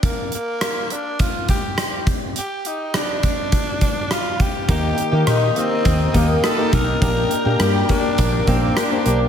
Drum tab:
HH |xxxxxxxx|xxxxxxxx|xxxxxxxx|xxxxxxxx|
SD |--r---r-|--r---r-|--r---r-|--r---r-|
BD |o---oo-o|---ooo-o|o---oo-o|o--ooo--|